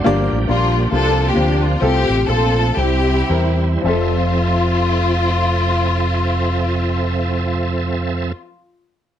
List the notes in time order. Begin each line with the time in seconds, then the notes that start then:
Already playing: F#4 C5
0.04 G1 G2 F3 G3 A#3 D4 F4 G4 D5
0.31 A1
0.47 A#1 A#3 D4 F4 G4 D5
0.91 C2 C3 F3 A#3 C4 D4 F4 G4 A4 C5
1.27 A#3 D4 G4
1.34 D2 A#3 D4 F4 G4 C5
1.63 F4
1.81 C2 C3 A3 C4 F4 G4 A4
2.09 A1
2.27 A#1 C4 F4 A4
2.77 C2 C3 G3 C4 E4 G4
3.29 E2 C4 E4 A#4
3.81 F1 F2 F3 C4 F4
3.85 A4 E5